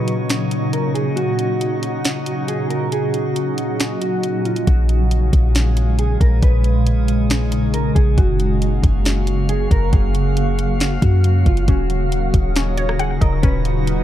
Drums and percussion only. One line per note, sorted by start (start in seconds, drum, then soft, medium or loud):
0.08 closed hi-hat medium
0.30 snare loud
0.30 closed hi-hat medium
0.51 closed hi-hat medium
0.73 closed hi-hat medium
0.95 closed hi-hat medium
1.17 closed hi-hat medium
1.39 closed hi-hat medium
1.61 closed hi-hat medium
1.83 closed hi-hat medium
2.05 snare loud
2.05 closed hi-hat medium
2.26 closed hi-hat medium
2.48 closed hi-hat medium
2.70 closed hi-hat medium
2.92 closed hi-hat medium
3.14 closed hi-hat medium
3.36 closed hi-hat medium
3.58 closed hi-hat medium
3.80 snare loud
3.80 closed hi-hat medium
4.02 closed hi-hat medium
4.23 closed hi-hat medium
4.45 closed hi-hat medium
4.56 closed hi-hat medium
4.67 kick loud
4.67 closed hi-hat medium
4.89 closed hi-hat medium
5.11 closed hi-hat medium
5.33 kick medium
5.33 closed hi-hat medium
5.55 snare loud
5.55 closed hi-hat medium
5.77 closed hi-hat medium
5.99 closed hi-hat medium
6.21 kick medium
6.21 closed hi-hat medium
6.43 kick loud
6.43 closed hi-hat medium
6.64 closed hi-hat medium
6.87 closed hi-hat medium
7.08 closed hi-hat medium
7.30 snare loud
7.30 closed hi-hat medium
7.52 closed hi-hat medium
7.74 closed hi-hat medium
7.96 kick loud
7.96 closed hi-hat medium
8.18 kick loud
8.18 closed hi-hat medium
8.40 closed hi-hat medium
8.62 closed hi-hat medium
8.83 kick medium
8.83 closed hi-hat medium
9.05 snare loud
9.05 closed hi-hat medium
9.27 closed hi-hat medium
9.49 closed hi-hat medium
9.71 kick medium
9.71 closed hi-hat medium
9.93 kick loud
9.93 closed hi-hat medium
10.15 closed hi-hat medium
10.37 closed hi-hat medium
10.59 closed hi-hat medium
10.80 snare loud
10.80 closed hi-hat medium
11.02 kick medium
11.02 closed hi-hat medium
11.24 closed hi-hat medium
11.46 kick medium
11.46 closed hi-hat medium
11.57 closed hi-hat medium
11.68 kick loud
11.68 closed hi-hat medium
11.90 closed hi-hat medium
12.12 closed hi-hat medium
12.34 kick medium
12.34 closed hi-hat medium
12.56 snare loud
12.56 closed hi-hat medium
12.77 closed hi-hat medium
12.89 cross-stick loud
12.99 closed hi-hat medium
13.21 kick medium
13.21 closed hi-hat medium
13.43 kick loud
13.43 closed hi-hat medium
13.65 closed hi-hat medium
13.87 closed hi-hat medium